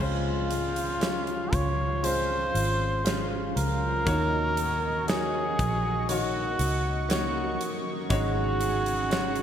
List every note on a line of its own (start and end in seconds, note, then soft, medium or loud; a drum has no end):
0.00 1.48 C#2 medium
0.00 0.50 C#3 medium
0.00 1.48 C#3 medium
0.00 0.50 F3 medium
0.00 0.50 G#3 medium
0.00 0.95 G#3 medium
0.00 0.50 C4 medium
0.00 0.96 C#4 medium
0.00 0.96 F4 medium
0.00 4.02 F4 medium
0.00 0.49 F4 medium
0.00 1.55 F4 medium
0.00 0.96 C5 medium
0.00 4.03 F5 medium
0.00 4.03 C6 medium
0.50 2.03 G#3 soft
0.50 2.03 F4 soft
0.50 closed hi-hat medium
0.76 closed hi-hat medium
1.00 1.98 G#3 medium
1.00 1.98 C#4 medium
1.00 1.98 F4 medium
1.00 1.98 C#5 medium
1.00 snare loud
1.00 closed hi-hat medium
1.27 closed hi-hat soft
1.53 2.51 C#2 medium
1.53 2.06 C#5 medium
1.53 kick medium
1.53 closed hi-hat medium
2.03 3.04 F3 medium
2.03 3.00 G#3 medium
2.03 3.05 G#3 medium
2.03 3.06 C4 medium
2.03 3.00 C#4 medium
2.03 3.00 F4 medium
2.03 3.06 F4 medium
2.03 3.00 C5 medium
2.03 3.30 C5 medium
2.03 closed hi-hat medium
2.55 3.52 G#1 medium
2.55 closed hi-hat medium
3.04 4.06 F3 medium
3.04 4.01 G#3 medium
3.04 4.07 G#3 medium
3.04 4.08 C4 medium
3.04 4.01 C#4 medium
3.04 4.01 F4 medium
3.04 4.08 F4 medium
3.04 4.02 C5 medium
3.04 snare loud
3.04 closed hi-hat medium
3.56 4.03 C#2 medium
3.56 5.10 A#4 loud
3.56 closed hi-hat medium
4.05 5.55 D#2 loud
4.05 5.55 D#3 medium
4.05 6.09 D#3 medium
4.05 5.02 A#3 medium
4.05 6.09 A#3 medium
4.05 6.10 C#4 medium
4.05 5.03 D#4 medium
4.05 5.03 F#4 medium
4.05 8.06 F#4 medium
4.05 5.03 C#5 medium
4.05 8.06 D#5 medium
4.05 9.43 C#6 medium
4.05 kick loud
4.05 closed hi-hat medium
4.10 6.11 F#4 medium
4.57 closed hi-hat medium
5.07 6.04 A#3 medium
5.07 6.04 D#4 medium
5.07 6.04 F#4 medium
5.07 6.10 G#4 medium
5.07 6.04 C#5 medium
5.07 snare loud
5.07 closed hi-hat medium
5.59 6.55 A#1 medium
5.59 kick medium
5.59 closed hi-hat medium
6.08 7.09 D#3 medium
6.08 7.04 A#3 medium
6.08 7.09 A#3 medium
6.08 7.11 C#4 medium
6.08 7.05 D#4 medium
6.08 7.05 F#4 medium
6.08 7.06 F#4 medium
6.08 7.11 F#4 medium
6.08 7.05 C#5 medium
6.08 closed hi-hat medium
6.59 7.56 C#2 medium
6.59 closed hi-hat medium
7.09 8.11 D#3 medium
7.09 8.05 A#3 medium
7.09 8.11 A#3 medium
7.09 8.12 C#4 medium
7.09 8.05 D#4 medium
7.09 8.05 F#4 medium
7.09 7.80 F#4 medium
7.09 8.12 F#4 medium
7.09 8.05 C#5 medium
7.09 snare loud
7.09 closed hi-hat medium
7.61 closed hi-hat medium
8.09 9.43 G#1 loud
8.09 9.43 G#2 medium
8.09 9.43 C#3 medium
8.09 9.43 F#3 medium
8.09 9.05 G#3 loud
8.09 9.43 C#4 medium
8.09 9.05 D#4 medium
8.09 9.43 D#4 medium
8.09 9.05 F#4 medium
8.09 9.43 F#4 loud
8.09 9.43 G#4 medium
8.09 9.05 C#5 loud
8.09 9.43 F#5 medium
8.09 kick loud
8.09 closed hi-hat medium
8.61 closed hi-hat medium
8.86 closed hi-hat soft
9.10 9.43 G#3 medium
9.10 9.43 D#4 medium
9.10 9.43 F#4 medium
9.10 9.43 C#5 medium
9.10 snare loud
9.10 closed hi-hat medium
9.36 closed hi-hat soft